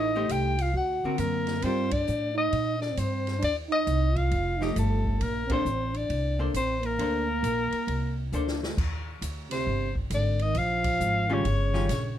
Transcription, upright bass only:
0, 0, Header, 1, 3, 480
1, 0, Start_track
1, 0, Key_signature, -2, "major"
1, 0, Tempo, 446097
1, 1764, Time_signature, 4, 2, 24, 8
1, 9444, Key_signature, -3, "major"
1, 13110, End_track
2, 0, Start_track
2, 0, Title_t, "Upright bass"
2, 0, Program_c, 0, 32
2, 0, Note_on_c, 0, 33, 70
2, 308, Note_off_c, 0, 33, 0
2, 318, Note_on_c, 0, 36, 74
2, 786, Note_off_c, 0, 36, 0
2, 792, Note_on_c, 0, 38, 63
2, 1087, Note_off_c, 0, 38, 0
2, 1271, Note_on_c, 0, 42, 71
2, 1743, Note_off_c, 0, 42, 0
2, 1754, Note_on_c, 0, 43, 66
2, 2224, Note_off_c, 0, 43, 0
2, 2242, Note_on_c, 0, 45, 75
2, 2709, Note_off_c, 0, 45, 0
2, 2716, Note_on_c, 0, 46, 77
2, 3185, Note_off_c, 0, 46, 0
2, 3197, Note_on_c, 0, 43, 75
2, 3666, Note_off_c, 0, 43, 0
2, 3684, Note_on_c, 0, 39, 69
2, 4150, Note_off_c, 0, 39, 0
2, 4161, Note_on_c, 0, 36, 82
2, 4628, Note_off_c, 0, 36, 0
2, 4640, Note_on_c, 0, 29, 79
2, 5108, Note_off_c, 0, 29, 0
2, 5122, Note_on_c, 0, 31, 79
2, 5589, Note_off_c, 0, 31, 0
2, 5603, Note_on_c, 0, 34, 69
2, 6069, Note_off_c, 0, 34, 0
2, 6079, Note_on_c, 0, 33, 70
2, 6547, Note_off_c, 0, 33, 0
2, 6557, Note_on_c, 0, 36, 72
2, 7026, Note_off_c, 0, 36, 0
2, 7035, Note_on_c, 0, 33, 68
2, 7505, Note_off_c, 0, 33, 0
2, 7518, Note_on_c, 0, 38, 69
2, 7984, Note_off_c, 0, 38, 0
2, 7991, Note_on_c, 0, 34, 70
2, 8287, Note_off_c, 0, 34, 0
2, 8471, Note_on_c, 0, 36, 71
2, 8943, Note_off_c, 0, 36, 0
2, 8953, Note_on_c, 0, 38, 71
2, 9424, Note_off_c, 0, 38, 0
2, 9438, Note_on_c, 0, 39, 65
2, 9906, Note_off_c, 0, 39, 0
2, 9915, Note_on_c, 0, 38, 78
2, 10385, Note_off_c, 0, 38, 0
2, 10399, Note_on_c, 0, 31, 73
2, 10863, Note_off_c, 0, 31, 0
2, 10870, Note_on_c, 0, 32, 82
2, 11341, Note_off_c, 0, 32, 0
2, 11354, Note_on_c, 0, 34, 74
2, 11823, Note_off_c, 0, 34, 0
2, 11837, Note_on_c, 0, 32, 82
2, 12305, Note_off_c, 0, 32, 0
2, 12318, Note_on_c, 0, 31, 77
2, 12785, Note_off_c, 0, 31, 0
2, 12797, Note_on_c, 0, 34, 80
2, 13110, Note_off_c, 0, 34, 0
2, 13110, End_track
3, 0, Start_track
3, 0, Title_t, "Muted upright bass strokes"
3, 1112, Note_on_c, 9, 29, 31
3, 1220, Note_off_c, 9, 29, 0
3, 8313, Note_on_c, 9, 29, 29
3, 8420, Note_off_c, 9, 29, 0
3, 13110, End_track
0, 0, End_of_file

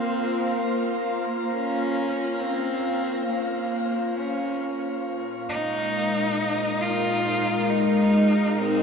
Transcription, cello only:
0, 0, Header, 1, 2, 480
1, 0, Start_track
1, 0, Key_signature, -5, "minor"
1, 0, Tempo, 500000
1, 8475, End_track
2, 0, Start_track
2, 0, Title_t, "Cello"
2, 0, Program_c, 0, 42
2, 0, Note_on_c, 0, 60, 99
2, 608, Note_on_c, 0, 58, 88
2, 622, Note_off_c, 0, 60, 0
2, 1451, Note_on_c, 0, 61, 101
2, 1466, Note_off_c, 0, 58, 0
2, 2305, Note_on_c, 0, 60, 97
2, 2320, Note_off_c, 0, 61, 0
2, 3141, Note_off_c, 0, 60, 0
2, 3147, Note_on_c, 0, 58, 80
2, 4006, Note_on_c, 0, 61, 83
2, 4021, Note_off_c, 0, 58, 0
2, 4634, Note_off_c, 0, 61, 0
2, 5277, Note_on_c, 0, 63, 110
2, 6537, Note_on_c, 0, 65, 95
2, 6551, Note_off_c, 0, 63, 0
2, 7397, Note_on_c, 0, 63, 94
2, 7411, Note_off_c, 0, 65, 0
2, 8256, Note_on_c, 0, 60, 105
2, 8271, Note_off_c, 0, 63, 0
2, 8475, Note_off_c, 0, 60, 0
2, 8475, End_track
0, 0, End_of_file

